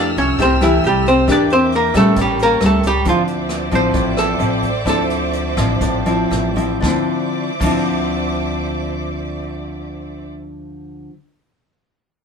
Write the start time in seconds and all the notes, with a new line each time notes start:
Already playing: F2 F3 A3 D4 E4 G4 A4 D5 G5 E6 F6
0.17 C2 C#4 C#5, kick, closed hi-hat
0.39 C2 C3 A3 C4 E4 G4 C5, kick, closed hi-hat
0.61 E3 A3 E4 G4, cross-stick, closed hi-hat
0.83 C2 G4, closed hi-hat
0.87 G3
1.06 C4 C5, kick, closed hi-hat
1.27 E3 A#3 D4 G4 A#4 E5 D6, kick, cross-stick, closed hi-hat
1.31 D4 D5
1.50 C4 C5, closed hi-hat
1.72 A#3, closed hi-hat
1.76 A#4
1.94 A#2 G3 A3 C#4 A4, kick, cross-stick, closed hi-hat
2.16 A1 A2 A5 C#6, kick, closed hi-hat
2.21 G3 G4
2.39 A#4, closed hi-hat
2.43 A#3
2.61 C#2 G3 A#3 C#4, cross-stick, closed hi-hat
2.65 A3 A4
2.83 kick, closed hi-hat
2.87 G3 G4
3.05 D2 D3 F3 C4 E4 F4 C5 D5 E5 D6, kick, closed hi-hat
3.09 F3
3.27 closed hi-hat
3.49 cross-stick, closed hi-hat
3.71 A1 F3 C4 E4 C5, kick, closed hi-hat
3.93 A1 A2, kick, closed hi-hat
4.17 A4, cross-stick, closed hi-hat
4.39 A1 F3 C4 E4, closed hi-hat
4.63 kick, closed hi-hat
4.85 D2 D3 F3 C4 E4, kick, cross-stick, closed hi-hat
4.89 A4
5.10 closed hi-hat
5.33 closed hi-hat
5.57 A1 F3 C4 E4, kick, cross-stick, closed hi-hat
5.81 A1 A2, kick, closed hi-hat
6.06 F3 C4 E4, closed hi-hat
6.31 A1, cross-stick, closed hi-hat
6.56 F3 C4 E4, kick, closed hi-hat
6.81 D2 D3 F3 C5 D5 E5 D6, kick, snare
6.85 C4 E4
7.60 D2 D3 F3, kick, crash
7.64 C4 E4